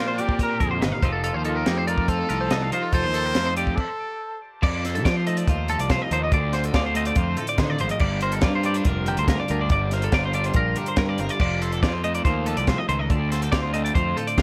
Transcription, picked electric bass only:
0, 0, Header, 1, 2, 480
1, 0, Start_track
1, 0, Tempo, 423729
1, 1409, Time_signature, 4, 2, 24, 8
1, 16336, End_track
2, 0, Start_track
2, 0, Title_t, "Picked electric bass"
2, 0, Program_c, 0, 34
2, 0, Note_on_c, 0, 46, 84
2, 600, Note_off_c, 0, 46, 0
2, 689, Note_on_c, 0, 41, 79
2, 897, Note_off_c, 0, 41, 0
2, 930, Note_on_c, 0, 31, 83
2, 1034, Note_off_c, 0, 31, 0
2, 1159, Note_on_c, 0, 29, 90
2, 1476, Note_off_c, 0, 29, 0
2, 1522, Note_on_c, 0, 39, 67
2, 1838, Note_off_c, 0, 39, 0
2, 1890, Note_on_c, 0, 41, 86
2, 2515, Note_off_c, 0, 41, 0
2, 2610, Note_on_c, 0, 36, 89
2, 2818, Note_off_c, 0, 36, 0
2, 2842, Note_on_c, 0, 36, 94
2, 3054, Note_off_c, 0, 36, 0
2, 3318, Note_on_c, 0, 29, 85
2, 3427, Note_off_c, 0, 29, 0
2, 3447, Note_on_c, 0, 39, 76
2, 3760, Note_off_c, 0, 39, 0
2, 3809, Note_on_c, 0, 41, 89
2, 4225, Note_off_c, 0, 41, 0
2, 5245, Note_on_c, 0, 41, 87
2, 5726, Note_off_c, 0, 41, 0
2, 5726, Note_on_c, 0, 53, 90
2, 6141, Note_off_c, 0, 53, 0
2, 6203, Note_on_c, 0, 39, 105
2, 6515, Note_off_c, 0, 39, 0
2, 6560, Note_on_c, 0, 36, 84
2, 6769, Note_off_c, 0, 36, 0
2, 6923, Note_on_c, 0, 39, 90
2, 7130, Note_off_c, 0, 39, 0
2, 7159, Note_on_c, 0, 38, 96
2, 7575, Note_off_c, 0, 38, 0
2, 7636, Note_on_c, 0, 38, 99
2, 8052, Note_off_c, 0, 38, 0
2, 8114, Note_on_c, 0, 41, 104
2, 8323, Note_off_c, 0, 41, 0
2, 8589, Note_on_c, 0, 50, 97
2, 8800, Note_off_c, 0, 50, 0
2, 8844, Note_on_c, 0, 32, 78
2, 8944, Note_off_c, 0, 32, 0
2, 9068, Note_on_c, 0, 31, 86
2, 9547, Note_on_c, 0, 43, 86
2, 9564, Note_off_c, 0, 31, 0
2, 9966, Note_off_c, 0, 43, 0
2, 10030, Note_on_c, 0, 29, 90
2, 10344, Note_off_c, 0, 29, 0
2, 10399, Note_on_c, 0, 38, 89
2, 10605, Note_off_c, 0, 38, 0
2, 10763, Note_on_c, 0, 38, 91
2, 10968, Note_off_c, 0, 38, 0
2, 10991, Note_on_c, 0, 31, 97
2, 11409, Note_off_c, 0, 31, 0
2, 11467, Note_on_c, 0, 31, 104
2, 11887, Note_off_c, 0, 31, 0
2, 11946, Note_on_c, 0, 34, 97
2, 12159, Note_off_c, 0, 34, 0
2, 12430, Note_on_c, 0, 43, 103
2, 12641, Note_off_c, 0, 43, 0
2, 12677, Note_on_c, 0, 31, 75
2, 12781, Note_off_c, 0, 31, 0
2, 12916, Note_on_c, 0, 29, 88
2, 13398, Note_on_c, 0, 41, 94
2, 13415, Note_off_c, 0, 29, 0
2, 13815, Note_off_c, 0, 41, 0
2, 13877, Note_on_c, 0, 39, 85
2, 14191, Note_off_c, 0, 39, 0
2, 14237, Note_on_c, 0, 36, 84
2, 14447, Note_off_c, 0, 36, 0
2, 14600, Note_on_c, 0, 37, 93
2, 14809, Note_off_c, 0, 37, 0
2, 14843, Note_on_c, 0, 38, 94
2, 15259, Note_off_c, 0, 38, 0
2, 15323, Note_on_c, 0, 38, 98
2, 15740, Note_off_c, 0, 38, 0
2, 15806, Note_on_c, 0, 41, 98
2, 16013, Note_off_c, 0, 41, 0
2, 16285, Note_on_c, 0, 50, 89
2, 16336, Note_off_c, 0, 50, 0
2, 16336, End_track
0, 0, End_of_file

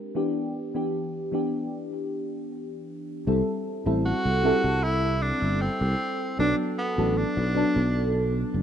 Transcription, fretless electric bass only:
0, 0, Header, 1, 2, 480
1, 0, Start_track
1, 0, Tempo, 779221
1, 97, Time_signature, 4, 2, 24, 8
1, 5314, End_track
2, 0, Start_track
2, 0, Title_t, "Fretless electric bass"
2, 0, Program_c, 0, 35
2, 2016, Note_on_c, 0, 36, 93
2, 2097, Note_off_c, 0, 36, 0
2, 2379, Note_on_c, 0, 33, 97
2, 2533, Note_off_c, 0, 33, 0
2, 2619, Note_on_c, 0, 36, 100
2, 2773, Note_off_c, 0, 36, 0
2, 2858, Note_on_c, 0, 36, 103
2, 3270, Note_off_c, 0, 36, 0
2, 3338, Note_on_c, 0, 31, 89
2, 3493, Note_off_c, 0, 31, 0
2, 3578, Note_on_c, 0, 36, 84
2, 3655, Note_off_c, 0, 36, 0
2, 3935, Note_on_c, 0, 35, 94
2, 4017, Note_off_c, 0, 35, 0
2, 4300, Note_on_c, 0, 33, 100
2, 4453, Note_off_c, 0, 33, 0
2, 4540, Note_on_c, 0, 35, 100
2, 4694, Note_off_c, 0, 35, 0
2, 4781, Note_on_c, 0, 35, 103
2, 5191, Note_off_c, 0, 35, 0
2, 5262, Note_on_c, 0, 30, 90
2, 5314, Note_off_c, 0, 30, 0
2, 5314, End_track
0, 0, End_of_file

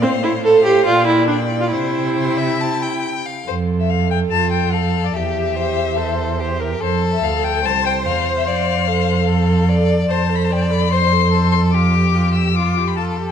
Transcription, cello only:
0, 0, Header, 1, 2, 480
1, 0, Start_track
1, 0, Tempo, 426439
1, 33, Time_signature, 4, 2, 24, 8
1, 5793, Tempo, 414938
1, 9633, Tempo, 409836
1, 15313, End_track
2, 0, Start_track
2, 0, Title_t, "Cello"
2, 0, Program_c, 0, 42
2, 32, Note_on_c, 0, 45, 62
2, 976, Note_off_c, 0, 45, 0
2, 988, Note_on_c, 0, 46, 60
2, 1944, Note_on_c, 0, 48, 61
2, 1961, Note_off_c, 0, 46, 0
2, 3670, Note_off_c, 0, 48, 0
2, 3908, Note_on_c, 0, 41, 59
2, 4808, Note_off_c, 0, 41, 0
2, 4857, Note_on_c, 0, 41, 54
2, 5777, Note_off_c, 0, 41, 0
2, 5797, Note_on_c, 0, 40, 56
2, 7677, Note_off_c, 0, 40, 0
2, 7712, Note_on_c, 0, 41, 58
2, 8183, Note_off_c, 0, 41, 0
2, 8192, Note_on_c, 0, 38, 54
2, 8673, Note_on_c, 0, 36, 60
2, 8691, Note_off_c, 0, 38, 0
2, 9153, Note_on_c, 0, 40, 52
2, 9171, Note_off_c, 0, 36, 0
2, 9631, Note_on_c, 0, 41, 60
2, 9648, Note_off_c, 0, 40, 0
2, 11527, Note_off_c, 0, 41, 0
2, 11534, Note_on_c, 0, 41, 66
2, 15313, Note_off_c, 0, 41, 0
2, 15313, End_track
0, 0, End_of_file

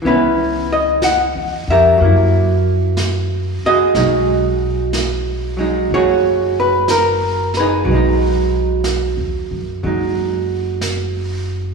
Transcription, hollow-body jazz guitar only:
0, 0, Header, 1, 2, 480
1, 0, Start_track
1, 0, Key_signature, 5, "major"
1, 0, Tempo, 980392
1, 19, Time_signature, 4, 2, 24, 8
1, 5749, End_track
2, 0, Start_track
2, 0, Title_t, "Hollow-body jazz guitar"
2, 0, Program_c, 0, 26
2, 9, Note_on_c, 0, 52, 44
2, 25, Note_on_c, 0, 59, 47
2, 30, Note_on_c, 0, 64, 54
2, 33, Note_on_c, 0, 61, 55
2, 36, Note_on_c, 0, 71, 67
2, 353, Note_off_c, 0, 71, 0
2, 355, Note_on_c, 0, 75, 78
2, 494, Note_off_c, 0, 75, 0
2, 510, Note_on_c, 0, 78, 82
2, 833, Note_off_c, 0, 78, 0
2, 835, Note_on_c, 0, 76, 83
2, 836, Note_off_c, 0, 59, 0
2, 838, Note_on_c, 0, 67, 52
2, 841, Note_on_c, 0, 70, 51
2, 962, Note_off_c, 0, 64, 0
2, 964, Note_off_c, 0, 52, 0
2, 964, Note_off_c, 0, 61, 0
2, 966, Note_on_c, 0, 54, 38
2, 985, Note_off_c, 0, 67, 0
2, 987, Note_on_c, 0, 58, 42
2, 999, Note_off_c, 0, 70, 0
2, 1001, Note_on_c, 0, 64, 42
2, 1287, Note_off_c, 0, 76, 0
2, 1793, Note_on_c, 0, 75, 90
2, 1794, Note_off_c, 0, 58, 0
2, 1796, Note_on_c, 0, 66, 62
2, 1797, Note_off_c, 0, 64, 0
2, 1799, Note_on_c, 0, 68, 54
2, 1926, Note_off_c, 0, 54, 0
2, 1932, Note_on_c, 0, 54, 45
2, 1937, Note_off_c, 0, 66, 0
2, 1939, Note_on_c, 0, 56, 52
2, 1940, Note_off_c, 0, 68, 0
2, 1942, Note_on_c, 0, 63, 49
2, 2721, Note_off_c, 0, 54, 0
2, 2721, Note_off_c, 0, 75, 0
2, 2727, Note_on_c, 0, 54, 41
2, 2729, Note_off_c, 0, 56, 0
2, 2735, Note_on_c, 0, 56, 43
2, 2737, Note_off_c, 0, 63, 0
2, 2743, Note_on_c, 0, 63, 45
2, 2906, Note_off_c, 0, 63, 0
2, 2908, Note_off_c, 0, 56, 0
2, 2908, Note_on_c, 0, 68, 60
2, 2908, Note_on_c, 0, 73, 80
2, 2910, Note_on_c, 0, 66, 59
2, 3228, Note_off_c, 0, 73, 0
2, 3230, Note_on_c, 0, 71, 82
2, 3367, Note_off_c, 0, 71, 0
2, 3380, Note_on_c, 0, 70, 73
2, 3705, Note_off_c, 0, 70, 0
2, 3707, Note_on_c, 0, 71, 76
2, 3713, Note_off_c, 0, 68, 0
2, 3719, Note_on_c, 0, 68, 57
2, 3720, Note_off_c, 0, 66, 0
2, 3722, Note_on_c, 0, 63, 55
2, 3836, Note_off_c, 0, 54, 0
2, 3842, Note_on_c, 0, 54, 50
2, 3872, Note_off_c, 0, 63, 0
2, 3874, Note_on_c, 0, 56, 48
2, 3890, Note_off_c, 0, 68, 0
2, 3892, Note_on_c, 0, 63, 53
2, 4808, Note_off_c, 0, 54, 0
2, 4813, Note_off_c, 0, 56, 0
2, 4814, Note_on_c, 0, 54, 34
2, 4819, Note_on_c, 0, 56, 35
2, 4824, Note_off_c, 0, 63, 0
2, 4829, Note_on_c, 0, 63, 34
2, 5284, Note_off_c, 0, 71, 0
2, 5749, Note_off_c, 0, 54, 0
2, 5749, Note_off_c, 0, 56, 0
2, 5749, Note_off_c, 0, 63, 0
2, 5749, End_track
0, 0, End_of_file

